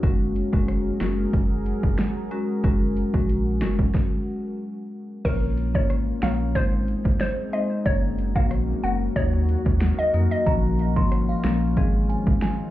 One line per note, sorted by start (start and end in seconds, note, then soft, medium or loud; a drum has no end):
0.00 0.43 F#1 loud
0.00 3.90 F#3 medium
0.00 0.23 G#3 medium
0.00 3.90 C#4 medium
0.00 0.23 C#4 medium
0.00 0.23 F#4 medium
0.00 2.61 G#4 medium
0.00 3.90 A#4 medium
0.00 0.23 A#4 loud
0.00 kick loud
0.00 closed hi-hat medium
0.36 closed hi-hat medium
0.53 0.92 F1 medium
0.53 0.71 G#3 medium
0.53 0.71 C#4 medium
0.53 0.71 F#4 medium
0.53 0.71 A#4 medium
0.53 kick medium
0.68 cross-stick medium
0.68 closed hi-hat medium
1.00 1.27 F#1 medium
1.00 1.20 G#3 medium
1.00 1.20 C#4 medium
1.00 1.20 F#4 medium
1.00 1.21 A#4 medium
1.00 finger snap medium
1.00 snare loud
1.00 closed hi-hat medium
1.33 1.74 F#1 medium
1.33 kick medium
1.33 closed hi-hat medium
1.66 closed hi-hat medium
1.83 1.96 F#1 loud
1.83 kick medium
1.98 finger snap medium
1.98 snare loud
1.98 closed hi-hat medium
2.31 2.51 G#3 medium
2.31 2.51 C#4 medium
2.31 2.51 F#4 medium
2.31 2.51 A#4 medium
2.31 closed hi-hat medium
2.64 3.04 F#1 loud
2.64 2.83 G#3 medium
2.64 2.83 C#4 medium
2.64 3.93 F#4 medium
2.64 2.84 F#4 medium
2.64 2.84 A#4 loud
2.64 kick loud
2.64 closed hi-hat medium
2.97 closed hi-hat medium
3.14 3.63 A#1 medium
3.14 3.32 G#3 medium
3.14 3.32 C#4 medium
3.14 3.32 F#4 medium
3.14 3.32 A#4 medium
3.14 kick medium
3.29 closed hi-hat medium
3.61 3.88 F#1 medium
3.61 3.81 G#3 medium
3.61 3.81 C#4 medium
3.61 3.81 F#4 medium
3.61 3.81 A#4 medium
3.61 finger snap loud
3.61 snare loud
3.61 closed hi-hat medium
3.79 kick medium
3.94 kick loud
3.94 snare medium
5.25 5.76 A#1 loud
5.25 5.44 A#3 medium
5.25 6.54 A#3 medium
5.25 6.54 C#4 medium
5.25 5.44 C#4 medium
5.25 6.54 F4 medium
5.25 5.44 F4 medium
5.25 5.40 A#4 loud
5.25 5.45 C#5 loud
5.25 kick loud
5.25 closed hi-hat medium
5.25 crash loud
5.58 closed hi-hat medium
5.75 6.13 G#1 medium
5.75 5.92 A#3 medium
5.75 5.93 C#4 medium
5.75 5.93 F4 medium
5.75 6.03 C#5 medium
5.75 5.93 C#5 medium
5.75 kick medium
5.90 cross-stick medium
5.90 closed hi-hat medium
6.22 6.57 A#1 loud
6.22 6.42 A#3 medium
6.22 6.42 C#4 medium
6.22 6.42 F4 medium
6.22 6.42 C#5 medium
6.22 6.50 F5 medium
6.22 finger snap medium
6.22 snare loud
6.22 closed hi-hat medium
6.55 6.96 G#1 loud
6.55 7.46 G#3 medium
6.55 7.84 G#3 medium
6.55 7.84 C4 medium
6.55 7.46 C4 medium
6.55 7.84 D#4 medium
6.55 7.46 D#4 medium
6.55 7.02 C5 loud
6.55 7.46 C5 loud
6.55 kick medium
6.55 closed hi-hat medium
6.88 closed hi-hat medium
7.05 7.18 G#1 medium
7.05 kick loud
7.20 7.35 C5 medium
7.20 finger snap medium
7.20 snare loud
7.20 closed hi-hat medium
7.53 7.72 G#3 medium
7.53 7.73 C4 medium
7.53 7.73 D#4 medium
7.53 7.73 C5 medium
7.53 7.68 D#5 medium
7.53 closed hi-hat medium
7.86 8.37 F#1 loud
7.86 8.05 F#3 medium
7.86 8.05 A#3 medium
7.86 9.15 A#3 medium
7.86 9.15 C#4 medium
7.86 8.05 C#4 medium
7.86 10.44 F#4 medium
7.86 8.05 A#4 loud
7.86 8.00 C#5 loud
7.86 kick loud
7.86 closed hi-hat medium
8.18 closed hi-hat medium
8.35 8.74 A#1 medium
8.35 8.53 F#3 medium
8.35 8.53 A#3 medium
8.35 8.54 C#4 medium
8.35 8.54 A#4 medium
8.35 8.63 F5 medium
8.35 kick loud
8.51 cross-stick medium
8.51 closed hi-hat medium
8.84 9.10 F#1 loud
8.84 9.03 F#3 medium
8.84 9.03 A#3 medium
8.84 9.03 C#4 medium
8.84 9.03 A#4 medium
8.84 9.11 F#5 medium
8.84 closed hi-hat medium
9.16 9.56 D#2 loud
9.16 10.45 D#3 medium
9.16 10.07 F#3 medium
9.16 10.07 A#3 medium
9.16 10.45 D#4 medium
9.16 10.07 D#4 medium
9.16 10.45 A#4 medium
9.16 10.07 A#4 loud
9.16 9.63 C#5 loud
9.16 kick medium
9.16 closed hi-hat medium
9.49 closed hi-hat medium
9.66 9.92 D#2 medium
9.66 kick medium
9.80 finger snap medium
9.80 snare loud
9.80 closed hi-hat medium
9.99 10.12 D#5 medium
10.14 10.28 F2 medium
10.14 10.33 F#3 medium
10.14 10.33 A#3 medium
10.14 10.34 D#4 medium
10.14 10.34 A#4 medium
10.14 closed hi-hat medium
10.31 10.44 D#5 medium
10.46 10.98 A#1 loud
10.46 10.66 F3 medium
10.46 10.66 A#3 medium
10.46 11.76 A#3 medium
10.46 10.66 C#4 medium
10.46 11.76 C#4 medium
10.46 11.76 F4 medium
10.46 10.66 A#4 loud
10.46 10.93 A#5 loud
10.46 kick loud
10.46 closed hi-hat medium
10.79 closed hi-hat medium
10.96 11.35 G#1 medium
10.96 11.14 F3 medium
10.96 11.14 A#3 medium
10.96 11.14 C#4 medium
10.96 11.14 A#4 medium
10.96 11.30 C6 loud
10.96 kick loud
11.12 cross-stick medium
11.12 closed hi-hat medium
11.29 12.06 F5 loud
11.44 11.78 A#1 loud
11.44 11.64 F3 medium
11.44 11.64 A#3 medium
11.44 11.64 C#4 medium
11.44 11.64 A#4 medium
11.44 finger snap medium
11.44 snare loud
11.44 closed hi-hat medium
11.77 12.17 G#1 loud
11.77 12.67 D#3 medium
11.77 12.71 G#3 medium
11.77 12.68 G#3 medium
11.77 12.71 C4 medium
11.77 12.68 C4 medium
11.77 12.71 D#4 medium
11.77 12.68 G#4 loud
11.77 kick medium
11.77 closed hi-hat medium
12.09 12.23 G#5 medium
12.09 closed hi-hat medium
12.27 12.39 G#1 medium
12.27 kick loud
12.41 12.71 G#5 medium
12.41 finger snap medium
12.41 snare loud
12.41 closed hi-hat medium